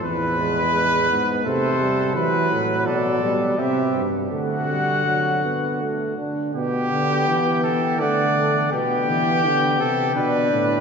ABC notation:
X:1
M:3/4
L:1/8
Q:1/4=83
K:Am
V:1 name="Trumpet"
B4 c2 | [K:G] B2 d2 e z | f4- f z | g4 f2 |
g4 d2 |]
V:2 name="Trumpet"
B4 A2 | [K:G] B2 A2 G z | F4- F z | G3 A d2 |
G3 A B2 |]
V:3 name="Trombone"
E, ^G, G, B, A, =G, | [K:G] F,3 G, C z | A, G, F, B, A, D | B,4 A,2 |
B,2 B,2 D2 |]
V:4 name="Bass trombone" clef=bass
E,,3 ^G,, C,2 | [K:G] E, A,, B,, B,, C, G,, | D,4- D, z | B,, D, E,2 D,2 |
B,, E, D, C, B,, A,, |]